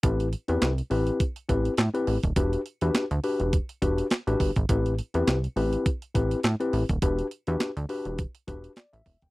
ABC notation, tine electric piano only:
X:1
M:4/4
L:1/16
Q:"Swing 16ths" 1/4=103
K:Am
V:1 name="Tine electric piano"
[CEGB]2 z [CEGB]2 z [CEGB]2 z2 [CEGB]2 z [CEGB]2 z | [D^FGB]2 z [DFGB]2 z [DFGB]2 z2 [DFGB]2 z [DFGB]2 z | [CEGB]2 z [CEGB]2 z [CEGB]2 z2 [CEGB]2 z [CEGB]2 z | [D^FGB]2 z [DFGB]2 z [DFGB]2 z2 [DFGB]2 d e2 g |]